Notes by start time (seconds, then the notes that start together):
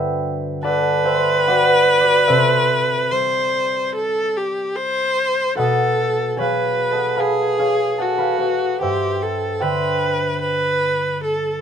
Already playing: G2 D3 F#4 A4 B4 C5 D5 E5 F#5 G5 B5
0.63 A4 B4 D5 F#5 A5
1.04 G4 C5 E5 G5
1.48 F#4 B4 D5 F#5
2.01 G4 B4 D5
2.28 C3 A4 C5 E5
3.11 G3 C5
3.95 A4
4.37 G4
4.77 C5
5.55 B2 F#4 A4 B4 D#5 F#5
6.36 F#3 G#4 C#5 F5 G#5
6.41 B4
6.91 A4 D#5 F#5 A5
7.16 B4 F5 G#5 B5
7.20 G#4
7.58 G#4 C#5 F5 G#5
7.98 F#4 A4 D#5 F#5 A5
8.18 B4 F5 G#5 B5
8.39 F#4 B4 D#5 F#5
8.80 G2 G4 C5 E5 G5
9.22 A4
9.60 D3 G4 B4 C5 E5 G5
10.41 B4
11.24 A4